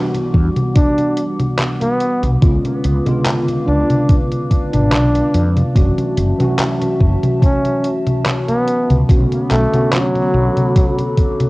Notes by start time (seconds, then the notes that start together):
Already playing: E3 G3 B3 D4 F#4 F#5 D6
0.14 closed hi-hat, high conga
0.34 E2, kick
0.56 closed hi-hat, high conga
0.75 D4, kick, closed hi-hat, high conga
0.98 closed hi-hat, high conga
1.17 closed hi-hat
1.40 closed hi-hat, high conga
1.59 clap, closed hi-hat, high conga
1.81 B3, closed hi-hat, high conga
2.00 closed hi-hat
2.23 B1, closed hi-hat, high conga
2.41 C#2 D3 G#3 B3 C#4 F4 B4 F5 D6, kick, closed hi-hat, high conga
2.65 closed hi-hat, high conga
2.84 C#2, closed hi-hat
3.05 C#3 D3 G#3 B3 F4, closed hi-hat, high conga
3.26 clap, closed hi-hat, high conga
3.48 closed hi-hat, high conga
3.67 C#2 D4
3.90 closed hi-hat, high conga
4.09 kick, closed hi-hat, high conga
4.32 closed hi-hat, high conga
4.51 kick, closed hi-hat
4.73 G#1 D4, closed hi-hat, high conga
4.92 B1, clap, closed hi-hat, high conga
5.15 closed hi-hat, high conga
5.34 F2, closed hi-hat
5.57 closed hi-hat, high conga
5.75 F#1 E3 F#3 A3 C#4 F#4 E5 A5, kick, closed hi-hat, high conga
5.98 closed hi-hat, high conga
6.17 F#1, closed hi-hat
6.38 E3 F#3 A3 C#4 F#4, closed hi-hat, high conga
6.59 clap, closed hi-hat, high conga
6.82 closed hi-hat, high conga
7.01 F#1, kick
7.23 closed hi-hat, high conga
7.42 C#4, kick, closed hi-hat, high conga
7.65 closed hi-hat, high conga
7.84 closed hi-hat
8.07 closed hi-hat, high conga
8.26 clap, closed hi-hat, high conga
8.48 B3, closed hi-hat, high conga
8.68 closed hi-hat
8.90 C#2, closed hi-hat, high conga
9.08 B1 D3 A3 B3 C#4 F#4 A4 B5 D6, kick, closed hi-hat, high conga
9.32 closed hi-hat, high conga
9.51 B1 A3, clap, closed hi-hat
9.72 D3 A3 B3 C#4 F#4, closed hi-hat, high conga
9.93 F#3, clap, closed hi-hat, high conga
10.15 closed hi-hat, high conga
10.34 B1
10.57 closed hi-hat, high conga
10.76 kick, closed hi-hat, high conga
10.98 closed hi-hat, high conga
11.17 kick, closed hi-hat
11.40 closed hi-hat, high conga